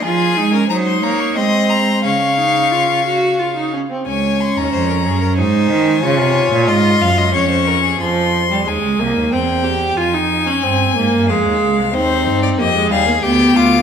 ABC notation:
X:1
M:3/4
L:1/16
Q:1/4=91
K:Db
V:1 name="Violin"
a4 b c' b d' c'4 | d'8- d'2 z2 | a2 c' b4- b a4- | a4 c'4 d'4 |
[K:Fm] c'4 a4 g4 | a8 f4 | c3 =d e2 f2 g2 =d'2 |]
V:2 name="Violin"
A3 B c2 d2 e2 b2 | f8- f2 z2 | d4 c B A B c4 | d4 e2 f e d c B A |
[K:Fm] z12 | z12 | E4 G2 A2 G2 F2 |]
V:3 name="Viola"
F2 E D E4 C4 | D2 E2 F2 G2 F E D C | D8 E4 | F8 D4 |
[K:Fm] F,3 G, A,2 B,2 C2 G2 | F E2 D C2 B,2 A,4 | C4 B, A, G, B, =B,4 |]
V:4 name="Cello" clef=bass
F,2 A,2 G,2 B,2 A,4 | D,8- D,2 z2 | D,,3 E,, F,,2 G,,2 A,,2 E,2 | D, C,2 B,, A,,2 G,,2 F,,4 |
[K:Fm] F,,4 E,, D,, C,, E,, =E,,4 | F,,4 G,,2 A,, G,, F,, E,, D,, C,, | E,,2 G,,2 F,,2 E,,2 =D,,2 D,,2 |]